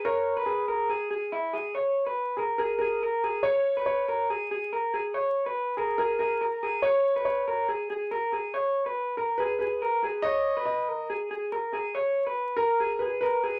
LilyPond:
<<
  \new Staff \with { instrumentName = "Upright piano" } { \time 4/4 \key gis \dorian \tempo 4 = 141 ais'4 gis'4 r2 | r4. gis'8 ais'8 ais'4. | cis''4 cis''4 r2 | r4. gis'8 ais'8 ais'4. |
cis''4 cis''4 r2 | r4. ais'8 b'8 b'4. | dis''4 dis''4 r2 | r4. ais'4 b'8 b'4 | }
  \new Staff \with { instrumentName = "Clean electric guitar" } { \time 4/4 \key gis \dorian cis''8. b'8. ais'8 gis'8 gis'8 e'8 gis'8 | cis''8. b'8. ais'8 gis'8 gis'8 ais'8 gis'8 | cis''8. b'8. ais'8 gis'8 gis'8 ais'8 gis'8 | cis''8. b'8. ais'8 gis'8 gis'8 ais'8 gis'8 |
cis''8. b'8. ais'8 gis'8 gis'8 ais'8 gis'8 | cis''8. b'8. ais'8 gis'8 gis'8 ais'8 gis'8 | cis''8. b'8. ais'8 gis'8 gis'8 ais'8 gis'8 | cis''8. b'8. ais'8 gis'8 gis'8 ais'8 gis'8 | }
>>